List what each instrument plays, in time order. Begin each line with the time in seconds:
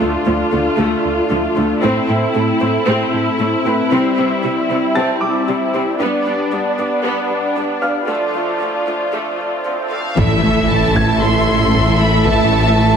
Already playing: analog synth pad A3 D4 F4 A4, viola section F4, grand piano E6
0.00 analog synth bass D2, cello section D2
0.25 cello section D2, analog synth bass D2, viola section F3
0.51 cello section D2, analog synth bass D2, viola section A3
0.78 cello section D2, analog synth bass D2, viola section A3
1.05 analog synth bass D2
1.30 cello section D2, analog synth bass D2, viola section F3
1.56 cello section D2, analog synth bass D2, viola section A3
1.82 cello section A2, analog synth bass A2, viola section C4 E4, analog synth pad C4 E4, taiko
2.08 cello section A2, analog synth bass A2, viola section C4
2.35 cello section A2, analog synth bass A2, viola section A3
2.61 cello section A2, analog synth bass A2, viola section C4, taiko
2.87 cello section A2, analog synth bass A2, viola section C4
3.14 analog synth bass A2
3.39 analog synth bass A2, cello section A2, viola section A3
3.65 analog synth bass A2, cello section A2, viola section C4, grand piano B4 B5
3.90 analog synth bass C2, cello section C3, analog synth pad G3 E5, viola section C4
4.17 analog synth bass C2, cello section C3, viola section C4
4.43 analog synth bass C2, cello section C3, viola section G3
4.70 analog synth bass C2, cello section C3, viola section C4
4.95 analog synth bass C2, cello section C3, viola section C4, grand piano A5 A6
5.21 analog synth bass C2, grand piano D6
5.48 analog synth bass C2, cello section C3, viola section G3
5.73 analog synth bass C2, cello section C3, viola section C4
5.99 analog synth bass G2, cello section G2, analog synth pad B3 D4 D5, viola section B3 D4, taiko
6.26 analog synth bass G2, cello section G2, viola section B3
6.51 analog synth bass G2, cello section G2, viola section G3
6.78 analog synth bass G2, cello section G2, viola section B3
7.04 analog synth bass G2, cello section G2, viola section B3
7.30 analog synth bass G2
7.56 analog synth bass G2, cello section G2, viola section G3
7.82 analog synth bass G2, cello section G2, viola section B3, grand piano F5 F6
8.08 analog synth bass D2, cello section D2, analog synth pad F3 A3, viola section A3 F4, swell
8.34 analog synth bass D2, cello section D2, viola section A3
8.60 analog synth bass D2, cello section D2, viola section F3
8.87 analog synth bass D2, cello section D2, viola section A3
9.12 cello section D2, analog synth bass D2, viola section A3
9.40 analog synth bass D2
9.65 cello section D2, analog synth bass D2, viola section F3
9.91 cello section D2, analog synth bass D2, viola section A3, violin section F5
10.17 detuned saw bass A1, double bass section A1, analog synth bass A2, cello section A2, analog synth pad E3 A3 E4 A4, viola section A3 E4, violin section A4 E5, taiko, impact
10.44 analog synth bass A3
10.69 analog synth bass A2, violin section A5
10.95 analog synth bass A2, grand piano G#6, taiko
11.22 analog synth bass A2, violin section C6
11.48 analog synth bass A2
11.75 analog synth bass A2, taiko
11.99 analog synth bass A3, violin section B5
12.26 analog synth bass A2, violin section A5, taiko
12.53 analog synth bass A3
12.78 analog synth bass A2, grand piano A5